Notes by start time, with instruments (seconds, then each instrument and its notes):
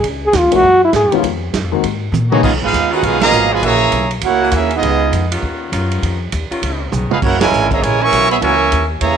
0.04 upright bass C#2, kick, ride
0.25 trombone G#4
0.33 upright bass D#2, kick, snare, hi-hat pedal, ride
0.37 trombone F4
0.43 upright bass C#2
0.51 upright bass B1, grand piano E3 G#3 A#3 C#4 F#4, ride
0.55 trombone F#4
0.63 upright bass F#2, kick
0.84 trombone E4
0.93 upright bass G#2, trombone G#4, kick, snare, hi-hat pedal, ride
1.04 upright bass F#2
1.12 upright bass E2, grand piano D#3 G#3 B3 C#4 F4, ride
1.23 upright bass F2, kick, ride
1.53 upright bass F#2, kick, snare, hi-hat pedal, ride
1.63 upright bass F2
1.72 upright bass C#2, grand piano D#3 G#3 A#3 C4 F#4
1.83 upright bass G#2, kick, ride
2.12 upright bass A#2, hi-hat pedal, high tom
2.30 grand piano D#3 G#3 B3 C#4 G#4, trumpet section A#3 D#4 F#4 C#5, trombone section C#4, mid tom
2.43 upright bass C#2, trombone section G#3 B3 D#4, trumpet section B3 F4 G#4 D#5, kick, crash
2.52 upright bass B1
2.61 upright bass G#1, trombone section G#3 B3 F4, trumpet section D#4 G#4 B4 F5
2.73 upright bass D#2, kick, hi-hat pedal, ride
2.91 saxophone section D#3 B3 C#4 F4, trumpet section D#4 G#4 B4 F#5, trombone section F#4
3.03 upright bass B1, trombone section G#3 B3 F4, trumpet section D#4 G#4 B4 F5, kick, ride
3.21 trombone section B2 F3 A#3, trumpet section G#4 D#5 F5 A#5, snare, ride
3.31 upright bass G#1, saxophone section D#3 B3 C#4 F4, hi-hat pedal
3.51 trombone section B2 F3 G#3, trumpet section F4 B4 D#5 G#5
3.61 upright bass A#1, trombone section C#3 E3 A#3, saxophone section E3 G#3 A#3 F#4, trumpet section G#4 C#5 E5 A#5, kick, ride
3.92 upright bass B1, kick, hi-hat pedal, ride
4.11 ride
4.21 upright bass C#2, trombone section A#3 C#4 F#4, trumpet section E4 A#4 C#5 F#5, kick, ride
4.41 saxophone section E3 G#3 A#3 F#4
4.52 upright bass D#2, trombone section A#3 C#4 E4, kick, hi-hat pedal, ride
4.56 trumpet section C#4 G#4 A#4 E5
4.70 trombone section B3, ride
4.75 trombone section G#3 D#4, trumpet section B3 F4 G#4 D#5
4.82 upright bass C#2, kick, ride
5.12 upright bass F2, kick, hi-hat pedal, ride
5.32 saxophone section D#3 B3 C#4 F4, ride
5.42 upright bass D#2, kick
5.71 upright bass F#2, saxophone section D#3 B3 C#4 F4, kick, hi-hat pedal, ride
5.91 ride
6.02 upright bass F2, kick, ride
6.32 upright bass D#2, kick, hi-hat pedal, ride
6.50 saxophone section D#3 B3 C#4 F4, muted upright bass stroke, ride
6.62 upright bass C#2, kick, ride
6.92 upright bass B1, saxophone section D#3 B3 C#4 G#4, hi-hat pedal, mid tom
7.02 upright bass G#1
7.11 upright bass F1, trombone section G#3 B3 F4, trumpet section D#4 G#4 B4 F5, mid tom
7.22 upright bass F#1, trombone section A#3 C#4 F#4, trumpet section E4 A#4 C#5 F#5, kick, crash
7.39 trombone section C#3 E3 G#3, saxophone section E3 G#3 A#3 F#4, trumpet section E4 A#4 C#5 G#5, snare, ride
7.52 upright bass G#1, hi-hat pedal
7.71 trombone section C#3 E3 A#3, trumpet section G#4 C#5 E5 A#5, kick, ride
7.82 upright bass A#1, trombone section C#3 E3 G#3, trumpet section E4 A#4 C#5 G#5, kick, ride
8.00 trombone section E3 A#3 C#4, trumpet section A#4 E5 G#5 C#6
8.12 upright bass B1, saxophone section E3 G#3 A#3 F#4, kick, hi-hat pedal, ride
8.30 trombone section B3, trumpet section G#4 C#5 E5 B5, ride
8.40 upright bass C#2, trombone section E3 A#3 C#4, saxophone section E3 G#3 A#3 F#4, trumpet section A#4 E5 G#5 C#6, kick, ride
8.72 upright bass D#2, kick, hi-hat pedal, ride
9.00 upright bass E2, trombone section C#3 E3 A#3, trumpet section G#4 C#5 E5 A#5, kick, ride